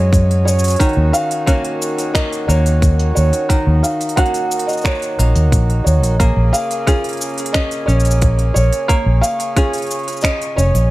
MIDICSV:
0, 0, Header, 1, 6, 480
1, 0, Start_track
1, 0, Tempo, 674157
1, 573, Time_signature, 4, 2, 24, 8
1, 7765, End_track
2, 0, Start_track
2, 0, Title_t, "Felt piano"
2, 0, Program_c, 0, 0
2, 0, Note_on_c, 0, 73, 101
2, 312, Note_off_c, 0, 73, 0
2, 322, Note_on_c, 0, 73, 99
2, 806, Note_on_c, 0, 77, 113
2, 822, Note_off_c, 0, 73, 0
2, 1520, Note_on_c, 0, 75, 98
2, 1551, Note_off_c, 0, 77, 0
2, 1764, Note_on_c, 0, 73, 100
2, 1774, Note_off_c, 0, 75, 0
2, 2233, Note_off_c, 0, 73, 0
2, 2243, Note_on_c, 0, 73, 95
2, 2726, Note_on_c, 0, 77, 90
2, 2743, Note_off_c, 0, 73, 0
2, 2952, Note_off_c, 0, 77, 0
2, 2963, Note_on_c, 0, 78, 96
2, 3323, Note_on_c, 0, 75, 90
2, 3339, Note_off_c, 0, 78, 0
2, 3439, Note_off_c, 0, 75, 0
2, 3447, Note_on_c, 0, 73, 96
2, 4149, Note_off_c, 0, 73, 0
2, 4160, Note_on_c, 0, 73, 83
2, 4647, Note_on_c, 0, 77, 115
2, 4661, Note_off_c, 0, 73, 0
2, 5359, Note_on_c, 0, 75, 103
2, 5392, Note_off_c, 0, 77, 0
2, 5595, Note_on_c, 0, 73, 96
2, 5613, Note_off_c, 0, 75, 0
2, 6055, Note_off_c, 0, 73, 0
2, 6082, Note_on_c, 0, 73, 103
2, 6560, Note_on_c, 0, 77, 109
2, 6582, Note_off_c, 0, 73, 0
2, 7258, Note_off_c, 0, 77, 0
2, 7280, Note_on_c, 0, 75, 106
2, 7521, Note_on_c, 0, 73, 102
2, 7534, Note_off_c, 0, 75, 0
2, 7765, Note_off_c, 0, 73, 0
2, 7765, End_track
3, 0, Start_track
3, 0, Title_t, "Harmonium"
3, 0, Program_c, 1, 20
3, 0, Note_on_c, 1, 54, 69
3, 0, Note_on_c, 1, 61, 68
3, 0, Note_on_c, 1, 68, 77
3, 542, Note_off_c, 1, 54, 0
3, 542, Note_off_c, 1, 68, 0
3, 573, Note_on_c, 1, 51, 74
3, 574, Note_on_c, 1, 66, 88
3, 2464, Note_off_c, 1, 61, 0
3, 2496, Note_on_c, 1, 63, 71
3, 4384, Note_off_c, 1, 51, 0
3, 4385, Note_off_c, 1, 66, 0
3, 4395, Note_off_c, 1, 63, 0
3, 4416, Note_on_c, 1, 49, 77
3, 4417, Note_on_c, 1, 58, 72
3, 4419, Note_on_c, 1, 68, 86
3, 6316, Note_off_c, 1, 58, 0
3, 6336, Note_on_c, 1, 73, 72
3, 7765, Note_off_c, 1, 49, 0
3, 7765, Note_off_c, 1, 68, 0
3, 7765, Note_off_c, 1, 73, 0
3, 7765, End_track
4, 0, Start_track
4, 0, Title_t, "Five-string banjo"
4, 0, Program_c, 2, 105
4, 0, Note_on_c, 2, 54, 85
4, 0, Note_on_c, 2, 56, 59
4, 0, Note_on_c, 2, 61, 67
4, 0, Note_on_c, 2, 66, 69
4, 563, Note_off_c, 2, 54, 0
4, 566, Note_on_c, 2, 51, 86
4, 618, Note_off_c, 2, 56, 0
4, 622, Note_off_c, 2, 61, 0
4, 624, Note_off_c, 2, 66, 0
4, 1042, Note_on_c, 2, 58, 64
4, 1047, Note_on_c, 2, 61, 62
4, 1051, Note_on_c, 2, 66, 69
4, 1525, Note_off_c, 2, 58, 0
4, 1527, Note_on_c, 2, 58, 72
4, 1767, Note_off_c, 2, 58, 0
4, 1770, Note_on_c, 2, 58, 62
4, 2476, Note_off_c, 2, 51, 0
4, 2485, Note_on_c, 2, 51, 78
4, 2961, Note_off_c, 2, 58, 0
4, 2967, Note_off_c, 2, 61, 0
4, 2970, Note_on_c, 2, 58, 61
4, 2972, Note_off_c, 2, 66, 0
4, 2975, Note_on_c, 2, 61, 60
4, 2979, Note_on_c, 2, 66, 70
4, 3448, Note_off_c, 2, 58, 0
4, 3451, Note_on_c, 2, 58, 63
4, 3690, Note_off_c, 2, 58, 0
4, 3693, Note_on_c, 2, 58, 58
4, 4408, Note_off_c, 2, 51, 0
4, 4411, Note_off_c, 2, 58, 0
4, 4411, Note_on_c, 2, 58, 80
4, 4462, Note_off_c, 2, 61, 0
4, 4464, Note_off_c, 2, 66, 0
4, 4890, Note_on_c, 2, 61, 62
4, 4895, Note_on_c, 2, 65, 66
4, 4899, Note_on_c, 2, 68, 73
4, 5368, Note_off_c, 2, 61, 0
4, 5371, Note_on_c, 2, 61, 68
4, 5604, Note_off_c, 2, 61, 0
4, 5607, Note_on_c, 2, 61, 59
4, 6316, Note_off_c, 2, 58, 0
4, 6324, Note_on_c, 2, 58, 89
4, 6801, Note_off_c, 2, 61, 0
4, 6804, Note_off_c, 2, 65, 0
4, 6809, Note_off_c, 2, 68, 0
4, 6809, Note_on_c, 2, 61, 66
4, 6813, Note_on_c, 2, 65, 66
4, 6818, Note_on_c, 2, 68, 73
4, 7288, Note_off_c, 2, 61, 0
4, 7291, Note_on_c, 2, 61, 74
4, 7522, Note_off_c, 2, 61, 0
4, 7525, Note_on_c, 2, 61, 63
4, 7765, Note_off_c, 2, 58, 0
4, 7765, Note_off_c, 2, 61, 0
4, 7765, Note_off_c, 2, 65, 0
4, 7765, Note_off_c, 2, 68, 0
4, 7765, End_track
5, 0, Start_track
5, 0, Title_t, "Fingered electric bass"
5, 0, Program_c, 3, 33
5, 0, Note_on_c, 3, 42, 103
5, 534, Note_off_c, 3, 42, 0
5, 691, Note_on_c, 3, 39, 90
5, 789, Note_off_c, 3, 39, 0
5, 1770, Note_on_c, 3, 39, 79
5, 2215, Note_off_c, 3, 39, 0
5, 2258, Note_on_c, 3, 39, 80
5, 2353, Note_off_c, 3, 39, 0
5, 2613, Note_on_c, 3, 39, 90
5, 2710, Note_off_c, 3, 39, 0
5, 3697, Note_on_c, 3, 34, 84
5, 3792, Note_off_c, 3, 34, 0
5, 3816, Note_on_c, 3, 39, 102
5, 3936, Note_off_c, 3, 39, 0
5, 3936, Note_on_c, 3, 34, 92
5, 4128, Note_off_c, 3, 34, 0
5, 4176, Note_on_c, 3, 39, 82
5, 4295, Note_off_c, 3, 39, 0
5, 4295, Note_on_c, 3, 34, 96
5, 4488, Note_off_c, 3, 34, 0
5, 4533, Note_on_c, 3, 34, 94
5, 4630, Note_off_c, 3, 34, 0
5, 5612, Note_on_c, 3, 34, 76
5, 6055, Note_off_c, 3, 34, 0
5, 6095, Note_on_c, 3, 34, 75
5, 6191, Note_off_c, 3, 34, 0
5, 6453, Note_on_c, 3, 34, 100
5, 6550, Note_off_c, 3, 34, 0
5, 7532, Note_on_c, 3, 29, 86
5, 7630, Note_off_c, 3, 29, 0
5, 7653, Note_on_c, 3, 34, 103
5, 7765, Note_off_c, 3, 34, 0
5, 7765, End_track
6, 0, Start_track
6, 0, Title_t, "Drums"
6, 90, Note_on_c, 9, 36, 104
6, 97, Note_on_c, 9, 46, 61
6, 100, Note_on_c, 9, 69, 52
6, 161, Note_off_c, 9, 36, 0
6, 168, Note_off_c, 9, 46, 0
6, 171, Note_off_c, 9, 69, 0
6, 219, Note_on_c, 9, 46, 30
6, 291, Note_off_c, 9, 46, 0
6, 341, Note_on_c, 9, 69, 78
6, 412, Note_off_c, 9, 69, 0
6, 420, Note_on_c, 9, 69, 62
6, 456, Note_on_c, 9, 46, 44
6, 460, Note_off_c, 9, 69, 0
6, 460, Note_on_c, 9, 69, 35
6, 484, Note_off_c, 9, 46, 0
6, 484, Note_on_c, 9, 46, 36
6, 497, Note_off_c, 9, 69, 0
6, 497, Note_on_c, 9, 69, 51
6, 513, Note_off_c, 9, 46, 0
6, 513, Note_on_c, 9, 46, 29
6, 543, Note_off_c, 9, 46, 0
6, 543, Note_on_c, 9, 46, 25
6, 568, Note_off_c, 9, 69, 0
6, 570, Note_on_c, 9, 36, 104
6, 573, Note_off_c, 9, 46, 0
6, 573, Note_on_c, 9, 46, 55
6, 577, Note_on_c, 9, 69, 42
6, 633, Note_off_c, 9, 46, 0
6, 633, Note_on_c, 9, 46, 12
6, 641, Note_off_c, 9, 36, 0
6, 648, Note_off_c, 9, 69, 0
6, 663, Note_off_c, 9, 46, 0
6, 663, Note_on_c, 9, 46, 11
6, 734, Note_off_c, 9, 46, 0
6, 813, Note_on_c, 9, 69, 84
6, 884, Note_off_c, 9, 69, 0
6, 932, Note_on_c, 9, 46, 39
6, 936, Note_on_c, 9, 69, 31
6, 1004, Note_off_c, 9, 46, 0
6, 1007, Note_off_c, 9, 69, 0
6, 1049, Note_on_c, 9, 36, 106
6, 1050, Note_on_c, 9, 46, 56
6, 1054, Note_on_c, 9, 69, 46
6, 1120, Note_off_c, 9, 36, 0
6, 1121, Note_off_c, 9, 46, 0
6, 1125, Note_off_c, 9, 69, 0
6, 1171, Note_on_c, 9, 46, 30
6, 1243, Note_off_c, 9, 46, 0
6, 1296, Note_on_c, 9, 69, 83
6, 1368, Note_off_c, 9, 69, 0
6, 1413, Note_on_c, 9, 46, 42
6, 1417, Note_on_c, 9, 69, 34
6, 1484, Note_off_c, 9, 46, 0
6, 1488, Note_off_c, 9, 69, 0
6, 1529, Note_on_c, 9, 36, 110
6, 1533, Note_on_c, 9, 26, 77
6, 1533, Note_on_c, 9, 46, 54
6, 1536, Note_on_c, 9, 69, 47
6, 1600, Note_off_c, 9, 36, 0
6, 1604, Note_off_c, 9, 26, 0
6, 1604, Note_off_c, 9, 46, 0
6, 1607, Note_off_c, 9, 69, 0
6, 1656, Note_on_c, 9, 46, 32
6, 1659, Note_on_c, 9, 69, 30
6, 1727, Note_off_c, 9, 46, 0
6, 1730, Note_off_c, 9, 69, 0
6, 1777, Note_on_c, 9, 69, 78
6, 1848, Note_off_c, 9, 69, 0
6, 1894, Note_on_c, 9, 46, 43
6, 1897, Note_on_c, 9, 69, 36
6, 1965, Note_off_c, 9, 46, 0
6, 1968, Note_off_c, 9, 69, 0
6, 2009, Note_on_c, 9, 36, 116
6, 2013, Note_on_c, 9, 46, 53
6, 2017, Note_on_c, 9, 69, 50
6, 2080, Note_off_c, 9, 36, 0
6, 2084, Note_off_c, 9, 46, 0
6, 2088, Note_off_c, 9, 69, 0
6, 2132, Note_on_c, 9, 46, 29
6, 2203, Note_off_c, 9, 46, 0
6, 2254, Note_on_c, 9, 69, 85
6, 2325, Note_off_c, 9, 69, 0
6, 2371, Note_on_c, 9, 46, 43
6, 2375, Note_on_c, 9, 69, 36
6, 2443, Note_off_c, 9, 46, 0
6, 2446, Note_off_c, 9, 69, 0
6, 2490, Note_on_c, 9, 36, 100
6, 2491, Note_on_c, 9, 46, 49
6, 2495, Note_on_c, 9, 69, 45
6, 2561, Note_off_c, 9, 36, 0
6, 2562, Note_off_c, 9, 46, 0
6, 2566, Note_off_c, 9, 69, 0
6, 2736, Note_on_c, 9, 69, 80
6, 2807, Note_off_c, 9, 69, 0
6, 2853, Note_on_c, 9, 46, 38
6, 2856, Note_on_c, 9, 69, 35
6, 2912, Note_off_c, 9, 46, 0
6, 2912, Note_on_c, 9, 46, 32
6, 2928, Note_off_c, 9, 69, 0
6, 2971, Note_on_c, 9, 36, 115
6, 2972, Note_off_c, 9, 46, 0
6, 2972, Note_on_c, 9, 46, 51
6, 2976, Note_on_c, 9, 69, 49
6, 3031, Note_off_c, 9, 46, 0
6, 3031, Note_on_c, 9, 46, 23
6, 3042, Note_off_c, 9, 36, 0
6, 3047, Note_off_c, 9, 69, 0
6, 3091, Note_off_c, 9, 46, 0
6, 3091, Note_on_c, 9, 46, 29
6, 3095, Note_on_c, 9, 69, 32
6, 3162, Note_off_c, 9, 46, 0
6, 3166, Note_off_c, 9, 69, 0
6, 3215, Note_on_c, 9, 69, 78
6, 3271, Note_on_c, 9, 46, 41
6, 3286, Note_off_c, 9, 69, 0
6, 3338, Note_on_c, 9, 69, 31
6, 3342, Note_off_c, 9, 46, 0
6, 3367, Note_off_c, 9, 69, 0
6, 3367, Note_on_c, 9, 69, 28
6, 3399, Note_off_c, 9, 69, 0
6, 3399, Note_on_c, 9, 69, 21
6, 3428, Note_off_c, 9, 69, 0
6, 3428, Note_on_c, 9, 69, 18
6, 3452, Note_on_c, 9, 36, 108
6, 3457, Note_on_c, 9, 26, 77
6, 3461, Note_off_c, 9, 69, 0
6, 3461, Note_on_c, 9, 69, 45
6, 3491, Note_off_c, 9, 69, 0
6, 3491, Note_on_c, 9, 69, 11
6, 3523, Note_off_c, 9, 36, 0
6, 3523, Note_off_c, 9, 69, 0
6, 3523, Note_on_c, 9, 69, 10
6, 3528, Note_off_c, 9, 26, 0
6, 3553, Note_off_c, 9, 69, 0
6, 3553, Note_on_c, 9, 69, 8
6, 3575, Note_on_c, 9, 46, 31
6, 3579, Note_off_c, 9, 69, 0
6, 3579, Note_on_c, 9, 69, 32
6, 3646, Note_off_c, 9, 46, 0
6, 3650, Note_off_c, 9, 69, 0
6, 3699, Note_on_c, 9, 69, 77
6, 3771, Note_off_c, 9, 69, 0
6, 3813, Note_on_c, 9, 46, 40
6, 3817, Note_on_c, 9, 69, 33
6, 3885, Note_off_c, 9, 46, 0
6, 3888, Note_off_c, 9, 69, 0
6, 3932, Note_on_c, 9, 36, 110
6, 3935, Note_on_c, 9, 46, 60
6, 3938, Note_on_c, 9, 69, 50
6, 4003, Note_off_c, 9, 36, 0
6, 4006, Note_off_c, 9, 46, 0
6, 4009, Note_off_c, 9, 69, 0
6, 4056, Note_on_c, 9, 46, 27
6, 4128, Note_off_c, 9, 46, 0
6, 4180, Note_on_c, 9, 69, 80
6, 4251, Note_off_c, 9, 69, 0
6, 4297, Note_on_c, 9, 46, 45
6, 4300, Note_on_c, 9, 69, 36
6, 4368, Note_off_c, 9, 46, 0
6, 4371, Note_off_c, 9, 69, 0
6, 4414, Note_on_c, 9, 36, 103
6, 4416, Note_on_c, 9, 46, 53
6, 4419, Note_on_c, 9, 69, 43
6, 4485, Note_off_c, 9, 36, 0
6, 4487, Note_off_c, 9, 46, 0
6, 4491, Note_off_c, 9, 69, 0
6, 4658, Note_on_c, 9, 69, 73
6, 4729, Note_off_c, 9, 69, 0
6, 4776, Note_on_c, 9, 46, 38
6, 4779, Note_on_c, 9, 69, 32
6, 4847, Note_off_c, 9, 46, 0
6, 4851, Note_off_c, 9, 69, 0
6, 4893, Note_on_c, 9, 36, 111
6, 4896, Note_on_c, 9, 46, 54
6, 4899, Note_on_c, 9, 69, 45
6, 4965, Note_off_c, 9, 36, 0
6, 4967, Note_off_c, 9, 46, 0
6, 4970, Note_off_c, 9, 69, 0
6, 5014, Note_on_c, 9, 46, 27
6, 5047, Note_off_c, 9, 46, 0
6, 5047, Note_on_c, 9, 46, 23
6, 5075, Note_off_c, 9, 46, 0
6, 5075, Note_on_c, 9, 46, 19
6, 5106, Note_off_c, 9, 46, 0
6, 5106, Note_on_c, 9, 46, 15
6, 5136, Note_on_c, 9, 69, 73
6, 5177, Note_off_c, 9, 46, 0
6, 5193, Note_on_c, 9, 46, 9
6, 5207, Note_off_c, 9, 69, 0
6, 5223, Note_off_c, 9, 46, 0
6, 5223, Note_on_c, 9, 46, 6
6, 5252, Note_off_c, 9, 46, 0
6, 5252, Note_on_c, 9, 46, 37
6, 5256, Note_on_c, 9, 69, 31
6, 5310, Note_off_c, 9, 46, 0
6, 5310, Note_on_c, 9, 46, 47
6, 5327, Note_off_c, 9, 69, 0
6, 5371, Note_on_c, 9, 26, 72
6, 5373, Note_on_c, 9, 36, 104
6, 5374, Note_on_c, 9, 69, 45
6, 5382, Note_off_c, 9, 46, 0
6, 5442, Note_off_c, 9, 26, 0
6, 5445, Note_off_c, 9, 36, 0
6, 5446, Note_off_c, 9, 69, 0
6, 5491, Note_on_c, 9, 46, 30
6, 5494, Note_on_c, 9, 69, 33
6, 5562, Note_off_c, 9, 46, 0
6, 5566, Note_off_c, 9, 69, 0
6, 5616, Note_on_c, 9, 69, 34
6, 5687, Note_off_c, 9, 69, 0
6, 5695, Note_on_c, 9, 69, 45
6, 5731, Note_on_c, 9, 46, 41
6, 5735, Note_off_c, 9, 69, 0
6, 5735, Note_on_c, 9, 69, 33
6, 5774, Note_off_c, 9, 69, 0
6, 5774, Note_on_c, 9, 69, 59
6, 5803, Note_off_c, 9, 46, 0
6, 5845, Note_off_c, 9, 69, 0
6, 5850, Note_on_c, 9, 46, 57
6, 5853, Note_on_c, 9, 36, 114
6, 5853, Note_on_c, 9, 69, 45
6, 5921, Note_off_c, 9, 46, 0
6, 5924, Note_off_c, 9, 36, 0
6, 5924, Note_off_c, 9, 69, 0
6, 5972, Note_on_c, 9, 46, 28
6, 6043, Note_off_c, 9, 46, 0
6, 6096, Note_on_c, 9, 69, 75
6, 6167, Note_off_c, 9, 69, 0
6, 6213, Note_on_c, 9, 46, 46
6, 6216, Note_on_c, 9, 69, 33
6, 6284, Note_off_c, 9, 46, 0
6, 6287, Note_off_c, 9, 69, 0
6, 6332, Note_on_c, 9, 36, 100
6, 6333, Note_on_c, 9, 46, 54
6, 6336, Note_on_c, 9, 69, 43
6, 6403, Note_off_c, 9, 36, 0
6, 6404, Note_off_c, 9, 46, 0
6, 6408, Note_off_c, 9, 69, 0
6, 6576, Note_on_c, 9, 69, 73
6, 6647, Note_off_c, 9, 69, 0
6, 6691, Note_on_c, 9, 46, 38
6, 6695, Note_on_c, 9, 69, 33
6, 6762, Note_off_c, 9, 46, 0
6, 6766, Note_off_c, 9, 69, 0
6, 6810, Note_on_c, 9, 36, 111
6, 6812, Note_on_c, 9, 46, 58
6, 6815, Note_on_c, 9, 69, 43
6, 6881, Note_off_c, 9, 36, 0
6, 6883, Note_off_c, 9, 46, 0
6, 6886, Note_off_c, 9, 69, 0
6, 6931, Note_on_c, 9, 46, 29
6, 6934, Note_on_c, 9, 69, 29
6, 6962, Note_off_c, 9, 46, 0
6, 6962, Note_on_c, 9, 46, 22
6, 6993, Note_off_c, 9, 46, 0
6, 6993, Note_on_c, 9, 46, 20
6, 7006, Note_off_c, 9, 69, 0
6, 7024, Note_off_c, 9, 46, 0
6, 7024, Note_on_c, 9, 46, 15
6, 7052, Note_off_c, 9, 46, 0
6, 7052, Note_on_c, 9, 46, 13
6, 7055, Note_on_c, 9, 69, 75
6, 7081, Note_off_c, 9, 46, 0
6, 7081, Note_on_c, 9, 46, 11
6, 7112, Note_off_c, 9, 46, 0
6, 7112, Note_on_c, 9, 46, 9
6, 7127, Note_off_c, 9, 69, 0
6, 7144, Note_off_c, 9, 46, 0
6, 7144, Note_on_c, 9, 46, 7
6, 7176, Note_off_c, 9, 46, 0
6, 7176, Note_on_c, 9, 46, 39
6, 7179, Note_on_c, 9, 69, 15
6, 7208, Note_off_c, 9, 69, 0
6, 7208, Note_on_c, 9, 69, 19
6, 7238, Note_off_c, 9, 69, 0
6, 7238, Note_on_c, 9, 69, 22
6, 7247, Note_off_c, 9, 46, 0
6, 7270, Note_off_c, 9, 69, 0
6, 7270, Note_on_c, 9, 69, 27
6, 7289, Note_on_c, 9, 36, 103
6, 7295, Note_on_c, 9, 26, 75
6, 7295, Note_on_c, 9, 46, 53
6, 7299, Note_off_c, 9, 69, 0
6, 7299, Note_on_c, 9, 69, 44
6, 7360, Note_off_c, 9, 36, 0
6, 7366, Note_off_c, 9, 26, 0
6, 7366, Note_off_c, 9, 46, 0
6, 7370, Note_off_c, 9, 69, 0
6, 7416, Note_on_c, 9, 46, 32
6, 7419, Note_on_c, 9, 69, 29
6, 7487, Note_off_c, 9, 46, 0
6, 7490, Note_off_c, 9, 69, 0
6, 7537, Note_on_c, 9, 69, 77
6, 7609, Note_off_c, 9, 69, 0
6, 7653, Note_on_c, 9, 46, 45
6, 7657, Note_on_c, 9, 69, 31
6, 7725, Note_off_c, 9, 46, 0
6, 7728, Note_off_c, 9, 69, 0
6, 7765, End_track
0, 0, End_of_file